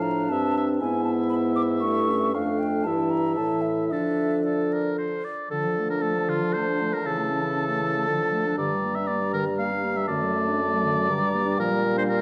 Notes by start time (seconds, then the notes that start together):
Already playing: A2 F3 D4 F5
0.02 A#5
0.29 G2 C4 E5 A5
0.57 E5
0.80 G#2 B3 E4 E5 G#5
1.04 A5
1.29 B5
1.56 D6
1.81 G2 A3 E4 C#6
2.09 C#4
2.34 F2 A3 D4 F5
2.59 G5
2.84 G2 E3 E4 E5 A5
3.10 A#5
3.36 A2 E3 E4 A5
3.62 E5
3.88 D3 F3 D4 A4 E5
4.43 A4 D5
4.73 A#4
4.98 C5
5.24 D5
5.49 D3 F3 A4 A5
5.65 F3
5.78 A3
5.90 D4 A#4
6.02 A3 A4
6.15 F3
6.28 D3 F4
6.41 F3
6.53 A3 C5
6.68 D4
6.80 A3
6.93 F3 A#4
7.04 C#3 E3 A4
7.18 A3
7.30 C#4
7.43 E4
7.56 C#4
7.69 A3
7.81 E3
7.95 A3
8.06 D3 F3
8.20 F3
8.32 A3
8.46 D4
8.56 G2 D3 G3 D5 A#5
8.72 G3
8.84 A#3
8.95 D4 E5
9.07 A#3 D5
9.21 G3
9.33 D3 A#4
9.45 G3
9.58 A#3 F5
9.72 D4
9.84 A#3
9.96 G3 E5
10.06 F#2 D3 A3 D5 A5
10.21 F#3
10.34 A3
10.47 D4
10.60 A3
10.72 F#3
10.84 D3
10.97 F#3
11.08 G2 D3 G3 A#5
11.21 G3
11.34 A#3
11.45 D4
11.58 A#2 F3 A#4 F5
11.72 G3
11.84 A#3
11.97 D4 C5
12.09 A#3 A#4